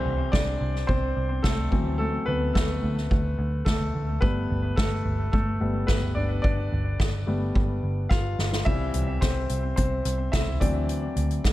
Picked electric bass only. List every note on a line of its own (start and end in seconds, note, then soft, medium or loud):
0.05 0.28 C2 medium
0.33 0.56 C2 medium
0.61 0.84 C2 medium
0.89 1.11 C2 medium
1.16 1.39 C2 medium
1.44 1.67 C2 medium
1.72 2.17 D2 medium
2.28 2.50 D2 medium
2.55 2.78 D2 medium
2.83 3.06 D2 medium
3.11 3.34 D2 medium
3.39 3.61 D2 medium
3.66 3.89 D2 medium
3.94 4.17 D2 medium
4.22 4.45 G1 medium
4.50 4.73 G1 medium
4.77 5.00 G1 medium
5.05 5.28 G1 medium
5.33 5.56 G1 medium
5.61 5.84 G1 medium
5.88 6.11 G1 medium
6.16 6.39 G1 medium
6.44 6.67 G1 medium
6.72 6.95 G1 medium
7.00 7.23 G1 medium
7.27 7.50 G1 medium
7.55 7.78 G1 medium
7.83 8.06 G1 medium
8.11 8.33 G1 medium
8.39 8.61 G1 medium
8.66 8.89 C2 medium
8.94 9.17 C2 medium
9.22 9.45 C2 medium
9.50 9.72 C2 medium
9.78 10.00 C2 medium
10.05 10.28 C2 medium
10.33 10.56 C2 medium
10.61 11.07 D2 medium
11.16 11.39 D2 medium
11.44 11.53 D2 medium